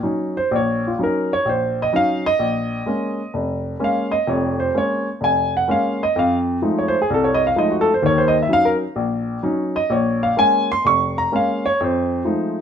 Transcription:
upright piano
0.03 F#3 C#4 D#4
0.37 C5
0.51 A#1
0.56 C#5
0.87 F4
0.99 F#3 C#4 D#4
1.03 A#4
1.33 C#5
1.45 A#1 C5
1.82 D#5
1.93 F#3 C#4 D#4 F5
2.26 D#5
2.39 A#1
2.86 G#3 A#3 C#4
3.34 F1
3.79 G#3 A#3 C#4
3.84 F5
4.11 D#5
4.27 F1 F2 C#5
4.60 C5
4.74 G#3 A#3 C#4 C#5
5.21 F1 G#5
5.57 F#5
5.68 G#3 A#3 C#4 F5
6.03 D#5
6.16 F2 F5
6.62 F3 G#3 A3 D#4
6.79 C#5
6.88 C5
7.02 G#4
7.10 C2 A4
7.24 C#5
7.34 D#5
7.47 F5
7.56 F3 G#3 A3 D#4 D#5
7.71 F#4
7.81 A4
7.94 C5
8.02 D#2 D#3 C#5
8.18 C5
8.28 D#5
8.42 E5
8.48 F#3 C#4 D#4
8.53 F5
8.65 A#4
8.96 A#1
9.43 F#3 C#4 D#4
9.76 D#5
9.90 A#1 C#5
10.23 F5
10.37 G#3 A#3 C#4 G#5
10.72 C6
10.85 F1 C#6
11.18 A#5
11.32 G#3 A#3 C#4
11.36 F5
11.66 C#5
11.80 F2 C5
12.25 F3 G#3 A3 D#4

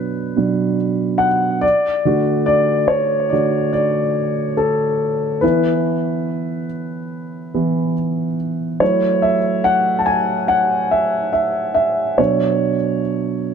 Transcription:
grand piano
Already playing: B2 F#3 D4 B4
0.36 B2 F#3 D4
1.18 F#5
1.61 D5
2.05 D3 A3 F#4
2.46 D5
2.88 C#5
3.30 D3 A3 F#4 D5
3.73 D5
4.57 A4
5.41 E3 B3 E4 B4
7.54 E3 B3 E4
8.80 F#3 A3 E4 C#5
9.22 E5
9.64 F#5
9.99 A5
10.06 G#5
10.48 F#5
10.91 E5
11.33 E5
11.74 E5
12.18 B2 F#3 D4 C#5

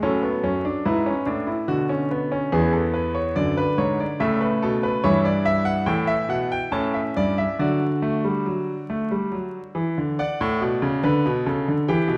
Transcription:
grand piano
0.03 A2 F#3 C#4 A4
0.23 B3
0.43 F#2 C#4
0.65 D4
0.85 G#2 E4 B4
1.06 C#4
1.26 A2 D4
1.47 E4
1.68 B2 D3 F#4
1.89 C#4
2.11 B3
2.32 C#4
2.52 E2 E3 B3 G#4
2.73 A4
2.94 B4
3.15 C#5
3.36 F#2 D3 D5
3.57 B4
3.78 G#2 C#5
4.00 D5
4.20 A2 C#3 A3 E5
4.41 B4
4.62 B2 A4
4.83 B4
5.04 G2 E3 E4 C#5
5.25 D5
5.46 E5
5.65 F#5
5.86 A2 E3 G5
6.07 E5
6.29 B2 F#5
6.52 G5
6.72 A2 C#4 A5
6.94 E5
7.17 G2 D5
7.38 E5
7.59 D3 F#3 F#4 D5
8.02 A3
8.24 G3
8.46 F#3
8.90 A3
9.11 G3
9.32 F#3
9.75 E3
9.98 D3
10.19 D5 F#5
10.41 A2
10.61 B2
10.82 C#3
11.04 D3 B4
11.26 B2
11.46 C#3 A4
11.68 D3
11.88 E3 G4 G5
12.08 B2

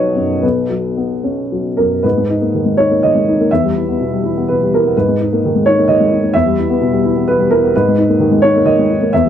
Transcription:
upright piano
Already playing: B1 F#3 B3 D#4 F#4 B4 C#5 D#5
0.16 F#2
0.42 B1 B4
0.70 F#3
0.97 B3
1.24 C#4
1.52 F#3
1.77 F#2 A#4
2.03 G#2 B4
2.17 G#3
2.29 D#4
2.42 A#3
2.55 D#3
2.65 G#3
2.77 D#4 C#5
2.91 A#3
3.03 D#3 D#5
3.15 G#3
3.29 D#4
3.40 A#3
3.51 E2 E5
3.64 G3
3.76 E4
3.89 B3
4.00 B2
4.13 G3
4.24 E4
4.37 B3
4.48 B2 B4
4.63 G3
4.74 E4 A#4
4.87 B3
4.97 G#2 B4
5.08 G#3
5.21 D#4
5.33 A#3
5.45 D#3
5.56 G#3
5.66 D#4 C#5
5.78 A#3
5.88 D#3 D#5
6.00 G#3
6.12 D#4
6.23 A#3
6.34 E2 E5
6.46 G3
6.58 E4
6.70 B3
6.81 B2
6.92 G3
7.04 E4
7.17 B3
7.28 B2 B4
7.39 G3
7.51 E4 A#4
7.63 B3
7.76 G#2 B4
7.88 G#3
7.98 D#4
8.09 A#3
8.20 D#3
8.32 G#3
8.42 D#4 C#5
8.56 A#3
8.66 D#3 D#5
8.79 G#3
8.90 D#4
9.02 A#3
9.13 E2 E5
9.25 G3

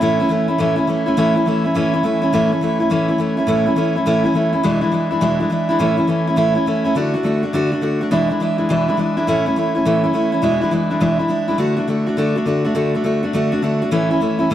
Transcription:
steel-string acoustic guitar
0.01 A2 E3 A3 C#4 E4
0.20 A3 C#4 E4
0.29 E3 A3 C#4 E4
0.48 A3 C#4 E4
0.58 A2 E3 A3 C#4 E4
0.76 A3 C#4 E4
0.87 E3 A3 C#4 E4
1.06 A3 C#4 E4
1.17 A2 E3 A3 C#4 E4
1.36 A3 C#4 E4
1.46 E3 A3 C#4 E4
1.64 A3 C#4 E4
1.75 A2 E3 A3 C#4 E4
1.94 A3 C#4 E4
2.03 E3 A3 C#4 E4
2.22 A3 C#4 E4
2.33 A2 E3 A3 C#4 E4
2.52 A3 C#4 E4
2.61 E3 A3 C#4 E4
2.80 A3 C#4 E4
2.90 A2 E3 A3 C#4 E4
3.08 A3 C#4 E4
3.18 E3 A3 C#4 E4
3.37 A3 C#4 E4
3.47 A2 E3 A3 C#4 E4
3.66 A3 C#4 E4
3.76 E3 A3 C#4 E4
3.96 A3 C#4 E4
4.06 A2 E3 A3 C#4 E4
4.24 A3 C#4 E4
4.34 E3 A3 C#4 E4
4.53 A3 C#4 E4
4.63 E2 B2 E3 G#3 D4 E4
4.81 E3 G#3 D4 E4
4.92 E3 G#3 D4 E4
5.11 E3 G#3 D4 E4
5.21 E2 B2 E3 G#3 D4 E4
5.40 E3 G#3 D4 E4
5.50 E3 G#3 D4 E4
5.69 E3 G#3 D4 E4
5.79 A2 E3 A3 C#4 E4
5.97 A3 C#4 E4
6.07 E3 A3 C#4 E4
6.27 A3 C#4 E4
6.36 A2 E3 A3 C#4 E4
6.55 A3 C#4 E4
6.66 E3 A3 C#4 E4
6.84 A3 C#4 E4
6.95 D3 A3 D4 F#4
7.14 A3 D4 F#4
7.23 D3 A3 D4 F#4
7.43 A3 D4 F#4
7.53 D3 A3 D4 F#4
7.72 A3 D4 F#4
7.81 D3 A3 D4 F#4
8.01 A3 D4 F#4
8.11 E2 B2 E3 G#3 D4 E4
8.30 E3 G#3 D4 E4
8.40 E3 G#3 D4 E4
8.58 E3 G#3 D4 E4
8.69 E2 B2 E3 G#3 D4 E4
8.88 E3 G#3 D4 E4
8.97 E3 G#3 D4 E4
9.17 E3 G#3 D4 E4
9.27 A2 E3 A3 C#4 E4
9.46 A3 C#4 E4
9.56 E3 A3 C#4 E4
9.75 A3 C#4 E4
9.85 A2 E3 A3 C#4 E4
10.03 A3 C#4 E4
10.13 E3 A3 C#4 E4
10.32 A3 C#4 E4
10.42 E2 B2 E3 G#3 D4 E4
10.61 E3 G#3 D4 E4
10.71 E3 G#3 D4 E4
10.90 E3 G#3 D4 E4
11.00 E2 B2 E3 G#3 D4 E4
11.19 E3 G#3 D4 E4
11.28 E3 G#3 D4 E4
11.48 E3 G#3 D4 E4
11.58 D3 A3 D4 F#4
11.76 A3 D4 F#4
11.88 D3 A3 D4 F#4
12.06 A3 D4 F#4
12.17 D3 A3 D4 F#4
12.35 A3 D4 F#4
12.46 D3 A3 D4 F#4
12.64 A3 D4 F#4
12.75 D3 A3 D4 F#4
12.94 A3 D4 F#4
13.04 D3 A3 D4 F#4
13.23 A3 D4 F#4
13.33 D3 A3 D4 F#4
13.52 A3 D4 F#4
13.62 D3 A3 D4 F#4
13.82 A3 D4 F#4
13.91 A2 E3 A3 C#4 E4
14.10 A3 C#4 E4
14.21 E3 A3 C#4 E4
14.39 A3 C#4 E4
14.50 A2 E3 A3 C#4

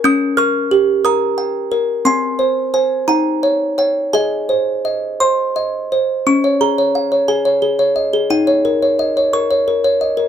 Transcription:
music box
0.04 C#4 D#6 G6
0.37 A#4 C#6 F6
0.71 G4
1.05 A#4 A#5 D#6
1.38 G5
1.72 A#4
2.05 C4 G#5 C6
2.39 C5
2.74 C5 G#5
3.08 D#4 G5 A#5
3.43 C#5
3.78 C#5 G5
4.13 G#4 D#5 G#5
4.49 C5
4.85 D#5
5.20 C5 C6
5.56 D#5
5.92 C5
6.27 C#4 C#6
6.44 C#5
6.61 G#4 A#5
6.78 C#5
6.95 F5
7.12 C#5
7.28 G#4 G#5
7.45 C#5
7.62 G#4
7.79 C#5
7.96 D#5
8.13 G#4
8.30 D#4 G5
8.47 C#5
8.65 A#4
8.82 C#5
8.99 D#5
9.17 C#5
9.33 A#4 C#6
9.51 C#5
9.68 A#4
9.84 C#5
10.01 D#5
10.17 A#4

